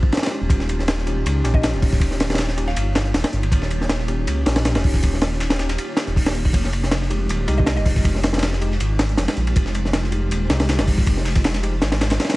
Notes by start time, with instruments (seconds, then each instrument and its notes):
Already playing: detuned saw bass G#1
0.03 kick
0.12 snare, ride
0.17 snare, ride
0.23 snare, ride
0.26 snare, ride
0.31 tine electric piano C#4 D#4 G4
0.41 detuned saw bass D#1
0.50 detuned saw bass D#1, kick, closed hi-hat, ride
0.60 snare
0.69 closed hi-hat, ride
0.79 snare
0.88 snare, closed hi-hat, ride
0.98 snare
1.06 tine electric piano C#4 D#4 G4, closed hi-hat, ride
1.25 detuned saw bass C#2, closed hi-hat, ride
1.44 detuned saw bass A#1, tine electric piano C#4 D#4 G4, open hi-hat, ride
1.54 synth pluck D#5, kick
1.63 synth pluck D#5, snare, closed hi-hat, ride
1.73 detuned saw bass D#1, snare, closed hi-hat
1.82 kick, closed hi-hat, open hi-hat
1.93 kick, snare
2.00 detuned saw bass D#1, kick, closed hi-hat, ride
2.11 snare
2.20 snare, closed hi-hat, ride
2.30 snare, ride
2.34 snare, ride
2.38 snare, closed hi-hat, ride
2.48 snare
2.57 tine electric piano C#4 D#4 G4, closed hi-hat, ride
2.68 synth pluck F5, snare
2.76 detuned saw bass G1, closed hi-hat, ride
2.95 snare, closed hi-hat, ride
3.05 snare, closed hi-hat
3.14 detuned saw bass D#1, snare, closed hi-hat, ride
3.24 snare, ride
3.33 detuned saw bass G1, snare, closed hi-hat
3.43 ride
3.52 detuned saw bass D#1, kick, closed hi-hat, ride
3.62 snare
3.71 closed hi-hat, ride
3.81 snare
3.89 snare, closed hi-hat, ride
3.99 snare
4.08 tine electric piano C#4 D#4 G4, closed hi-hat, ride
4.27 detuned saw bass C#2, closed hi-hat, ride
4.46 detuned saw bass A#1, tine electric piano C#4 D#4 G4, snare, open hi-hat, ride
4.56 snare, ride
4.65 snare, closed hi-hat, ride
4.75 detuned saw bass D#1, snare, closed hi-hat, ride
4.84 kick, closed hi-hat, open hi-hat
4.94 kick, snare
5.03 detuned saw bass D#1, kick, closed hi-hat, ride
5.13 snare
5.21 snare, closed hi-hat, ride
5.32 snare
5.40 snare, closed hi-hat, ride
5.50 snare, ride
5.59 tine electric piano C#4 D#4 G4, snare, closed hi-hat
5.69 snare, closed hi-hat, ride
5.78 closed hi-hat, ride
5.97 snare, closed hi-hat, ride
6.07 detuned saw bass D#1, snare, closed hi-hat
6.16 kick, open hi-hat
6.26 snare, ride
6.35 snare, closed hi-hat
6.45 kick, open hi-hat
6.53 detuned saw bass F1, kick, closed hi-hat, ride
6.64 snare
6.73 closed hi-hat, ride
6.83 snare
6.91 snare, closed hi-hat, ride
7.02 snare
7.10 tine electric piano G#3 D#4 G4, closed hi-hat, ride
7.29 detuned saw bass D#1, closed hi-hat, ride
7.48 detuned saw bass C2, tine electric piano G#3 D#4 G4, open hi-hat, ride
7.58 synth pluck D#5, kick
7.66 synth pluck D#5, snare, closed hi-hat, ride
7.77 detuned saw bass F1, synth pluck D#5, snare, closed hi-hat
7.85 kick, closed hi-hat, open hi-hat
7.96 kick, snare
8.04 detuned saw bass F1, kick, closed hi-hat, ride
8.15 snare
8.23 snare, closed hi-hat, ride
8.33 snare, ride
8.38 snare, ride
8.43 snare, closed hi-hat, ride
8.53 snare
8.61 tine electric piano G#3 D#4 G4, closed hi-hat, ride
8.72 snare
8.80 detuned saw bass G#1, closed hi-hat, ride
8.99 snare, closed hi-hat, ride
9.09 snare, closed hi-hat
9.17 detuned saw bass F1, snare, closed hi-hat, ride
9.28 snare, ride
9.36 detuned saw bass A#1, snare, closed hi-hat
9.47 ride
9.56 detuned saw bass F1, kick, closed hi-hat, ride
9.66 snare
9.75 closed hi-hat, ride
9.85 snare
9.93 snare, closed hi-hat, ride
10.03 snare
10.12 tine electric piano G#3 D#4 G4, closed hi-hat, ride
10.31 detuned saw bass D#1, closed hi-hat, ride
10.50 detuned saw bass C2, tine electric piano G#3 D#4 G4, snare, closed hi-hat, ride
10.60 snare, ride
10.69 snare, closed hi-hat, ride
10.79 detuned saw bass F1, snare, closed hi-hat, ride
10.87 kick, closed hi-hat, open hi-hat
10.98 kick, snare
11.07 detuned saw bass F1, kick, closed hi-hat, ride
11.17 snare
11.25 snare, closed hi-hat, ride
11.35 kick, snare, closed hi-hat
11.44 snare, closed hi-hat, ride
11.54 snare, closed hi-hat
11.63 tine electric piano G#3 D#4 G4, closed hi-hat, ride
11.82 detuned saw bass G#1, snare, closed hi-hat, ride
11.92 snare, ride
12.01 snare, closed hi-hat, ride
12.10 snare, closed hi-hat, ride
12.20 snare, closed hi-hat, ride
12.24 snare, ride
12.29 snare, closed hi-hat, ride